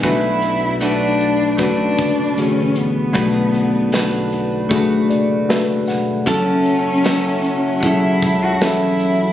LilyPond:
<<
  \new Staff \with { instrumentName = "Brass ensemble" } { \time 4/4 \key b \mixolydian \tempo 4 = 77 r1 | r1 | <fis' cis'' e'' fis''>1 | }
  \new Staff \with { instrumentName = "Tine electric piano" } { \time 4/4 \key b \mixolydian << { b,4. r2 r8 | b,4. r4 d''8 e''8 fis''8 | r1 | } \\ { <a d' fis' b'>2 <a cis' d' fis' b'>4 <d a fis' gis'>4 | <a d' fis' b'>2 <a d' fis' gis'>4 <a d' fis' b'>4 | <fis cis' e' a'>2 <fis cis' e' gis'>4 <fis cis' e' a'>4 | } >> }
  \new Staff \with { instrumentName = "Cello" } { \time 4/4 \key b \mixolydian e'4 d'4 d'4 cis'8 b8~ | b4. r2 r8 | cis'2 e'8. fis'16 e'4 | }
  \new Staff \with { instrumentName = "Clean electric guitar" } { \time 4/4 \key b \mixolydian <b, fis a d' fis' b'>4 <a d' fis' b'>4 <a fis' b'>2 | <b, fis a d' fis' b'>4 <a d' fis' b'>4 <a d' fis' b'>2 | <fis cis' e' a'>4 <fis cis' e' a'>4 <fis cis' e' a'>2 | }
  \new Staff \with { instrumentName = "Sub bass" } { \clef bass \time 4/4 \key b \mixolydian b,,2~ b,,8 fis,,8 a,,8 a,,8 | b,,2~ b,,8 fis,,4 e,,8 | fis,,2~ fis,,8 cis,8 a,,8 a,,8 | }
  \new DrumStaff \with { instrumentName = "Drums" } \drummode { \time 4/4 <hh bd>8 hh8 hh8 hh8 <hh bd>8 <hh bd>8 hh8 hh8 | <hh bd>8 hh8 <hh sn>8 hh8 <hh bd>8 hh8 <hh sn>8 <hh sn>8 | <hh bd>8 hh8 <hh sn>8 hh8 <hh bd>8 <hh bd>8 <hh sn>8 hh8 | }
>>